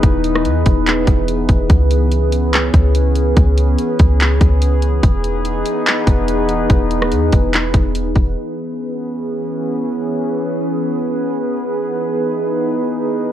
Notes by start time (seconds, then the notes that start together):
Already playing: E3 B3 D#4 G#4 B4
0.03 E1, kick, closed hi-hat
0.24 closed hi-hat
0.35 cross-stick
0.45 E2, closed hi-hat
0.66 E1, kick, closed hi-hat
0.87 clap, closed hi-hat
1.07 E1, kick, closed hi-hat
1.28 closed hi-hat
1.49 E1, kick, closed hi-hat
1.70 C#2 C#4 G#4, kick, closed hi-hat
1.91 closed hi-hat
2.12 closed hi-hat
2.32 closed hi-hat
2.53 clap, closed hi-hat
2.74 C#2, kick, closed hi-hat
2.95 closed hi-hat
3.15 closed hi-hat
3.36 C#2, kick, closed hi-hat
3.57 closed hi-hat
3.78 closed hi-hat
3.99 C#2, kick, closed hi-hat
4.20 clap, closed hi-hat
4.41 C#2, kick, closed hi-hat
4.62 closed hi-hat
4.82 closed hi-hat
5.03 E1 E3 B3 D#4 B4, kick, closed hi-hat
5.24 closed hi-hat
5.45 closed hi-hat
5.66 closed hi-hat
5.87 clap, closed hi-hat
6.07 E1, kick, closed hi-hat
6.28 closed hi-hat
6.49 closed hi-hat
6.70 E1, kick, closed hi-hat
6.91 closed hi-hat
7.02 cross-stick
7.12 E2, closed hi-hat
7.32 E1, kick, closed hi-hat
7.54 clap, closed hi-hat
7.74 E1, kick, closed hi-hat
7.95 closed hi-hat
8.16 E1, kick, closed hi-hat
8.36 E3 B3 C#4 G#4 B4
11.70 E3 D#4